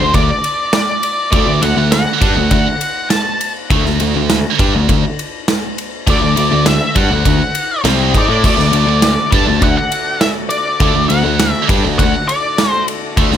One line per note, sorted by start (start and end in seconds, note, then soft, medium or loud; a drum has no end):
0.00 0.14 D2 medium
0.00 0.14 D3 medium
0.00 0.14 A3 medium
0.00 0.17 C5 medium
0.14 0.29 D2 medium
0.14 0.30 D3 medium
0.14 0.30 A3 medium
0.14 0.73 D5 medium
0.14 kick medium
0.14 ride medium
0.44 ride medium
0.73 1.31 D5 medium
0.73 snare loud
0.73 ride medium
1.03 ride medium
1.32 1.46 D2 medium
1.32 1.47 D3 medium
1.32 1.47 A3 loud
1.32 1.63 D5 medium
1.32 kick loud
1.32 ride loud
1.47 1.61 D2 medium
1.47 1.62 D3 medium
1.47 1.62 A3 medium
1.62 1.75 D2 medium
1.62 1.75 D3 medium
1.62 1.75 A3 medium
1.62 1.90 F#5 medium
1.62 ride medium
1.76 2.05 D2 medium
1.76 2.01 D3 medium
1.76 2.01 A3 medium
1.92 2.51 F#5 loud
1.92 snare loud
1.92 ride loud
2.21 2.35 G2 medium
2.21 2.36 G3 medium
2.21 2.36 D4 loud
2.21 kick loud
2.21 ride medium
2.36 2.50 D2 medium
2.36 2.50 D3 medium
2.36 2.50 A3 medium
2.51 2.65 D2 medium
2.51 2.67 D3 medium
2.51 2.67 A3 medium
2.51 3.10 F#5 loud
2.51 kick medium
2.51 ride loud
2.81 ride medium
3.10 3.52 A5 medium
3.10 snare loud
3.10 ride loud
3.41 ride medium
3.70 3.84 D2 medium
3.70 3.84 D3 medium
3.70 3.84 A3 medium
3.70 kick loud
3.70 ride loud
3.85 3.99 D2 medium
3.85 3.99 D3 medium
3.85 4.00 A3 medium
3.85 snare soft
4.00 4.14 D2 medium
4.00 4.15 D3 medium
4.00 4.15 A3 medium
4.00 ride medium
4.16 4.43 D2 medium
4.16 4.39 D3 medium
4.16 4.40 A3 medium
4.30 snare loud
4.30 ride loud
4.59 4.73 G2 medium
4.59 4.73 G3 medium
4.59 4.74 D4 loud
4.59 kick loud
4.59 ride medium
4.75 4.88 D2 medium
4.75 4.89 D3 medium
4.75 4.89 A3 medium
4.89 5.03 D2 medium
4.89 5.04 D3 medium
4.89 5.04 A3 medium
4.89 kick medium
4.89 ride loud
5.19 ride medium
5.48 snare loud
5.48 ride medium
5.78 ride medium
6.07 6.21 D2 loud
6.07 6.21 D3 medium
6.07 6.21 A3 medium
6.07 6.67 D5 medium
6.07 kick loud
6.07 ride loud
6.22 6.36 D2 medium
6.22 6.35 D3 medium
6.22 6.36 A3 medium
6.36 6.51 D2 medium
6.36 6.49 D3 medium
6.36 6.50 A3 medium
6.36 ride medium
6.51 6.79 D2 medium
6.51 6.75 D3 medium
6.51 6.75 A3 medium
6.66 6.95 E5 loud
6.66 snare loud
6.66 ride loud
6.96 7.10 G2 medium
6.96 7.10 G3 medium
6.96 7.10 D4 medium
6.96 7.81 F#5 medium
6.96 kick loud
6.96 ride medium
7.11 7.25 D2 medium
7.11 7.24 D3 medium
7.11 7.24 A3 medium
7.25 7.39 D2 medium
7.25 7.40 D3 medium
7.25 7.40 A3 medium
7.25 kick medium
7.25 ride loud
7.55 ride medium
7.84 8.12 C2 loud
7.84 8.13 C3 medium
7.84 8.13 G3 loud
7.84 8.14 C4 loud
7.84 snare loud
7.84 ride loud
8.14 8.28 G#2 loud
8.14 8.28 G#3 medium
8.14 8.29 D#4 medium
8.14 8.44 D5 medium
8.14 kick loud
8.14 ride medium
8.28 8.43 A2 medium
8.28 8.43 A3 medium
8.28 8.43 E4 medium
8.43 8.57 D2 medium
8.43 8.56 D3 medium
8.43 13.37 D3 medium
8.43 8.56 A3 loud
8.43 13.37 A3 medium
8.43 13.37 F#4 medium
8.43 13.37 D5 medium
8.43 9.30 D5 medium
8.43 kick loud
8.43 crash loud
8.57 8.72 D2 medium
8.57 8.71 D3 medium
8.57 8.72 A3 medium
8.57 snare soft
8.72 8.86 D2 medium
8.72 8.86 D3 medium
8.72 8.86 A3 medium
8.72 ride medium
8.87 9.15 D2 medium
8.87 9.11 D3 medium
8.87 9.12 A3 medium
9.02 snare loud
9.02 ride loud
9.31 9.46 G2 medium
9.31 9.46 G3 medium
9.31 9.46 D4 loud
9.31 kick loud
9.31 ride medium
9.35 9.63 A5 loud
9.46 9.61 D2 medium
9.46 9.60 D3 medium
9.46 9.61 A3 medium
9.61 9.76 D2 medium
9.61 9.77 D3 medium
9.61 9.77 A3 medium
9.61 9.76 F#5 loud
9.61 kick medium
9.61 ride medium
9.78 10.19 F#5 loud
9.92 ride medium
10.21 10.29 E5 medium
10.21 snare loud
10.21 ride medium
10.49 11.05 D5 medium
10.49 ride medium
10.80 10.94 D2 medium
10.80 10.93 D3 medium
10.80 10.94 A3 loud
10.80 kick loud
10.80 ride loud
10.95 11.09 D2 medium
10.95 11.09 D3 medium
10.95 11.09 A3 medium
11.09 11.24 D2 medium
11.09 11.22 D3 medium
11.09 11.23 A3 medium
11.09 11.52 F#5 medium
11.09 ride medium
11.23 11.52 D2 medium
11.23 11.48 D3 medium
11.23 11.48 A3 medium
11.40 snare loud
11.40 ride loud
11.52 11.65 E5 medium
11.68 11.83 G2 medium
11.68 11.83 G3 medium
11.68 11.83 D4 medium
11.68 kick loud
11.68 ride medium
11.84 11.98 D2 medium
11.84 11.97 D3 medium
11.84 11.98 A3 medium
11.98 12.13 D2 medium
11.98 12.14 D3 medium
11.98 12.14 A3 medium
11.98 12.29 F#5 loud
11.98 kick loud
11.98 ride loud
12.28 12.71 D5 medium
12.28 ride medium
12.58 snare loud
12.58 ride loud
12.71 12.84 C5 medium
12.88 ride medium
13.17 13.31 D2 medium
13.17 13.31 D3 medium
13.17 13.31 A3 loud
13.17 kick loud
13.17 ride loud
13.32 13.37 D2 medium
13.32 13.37 D3 medium
13.32 13.37 A3 medium
13.32 snare soft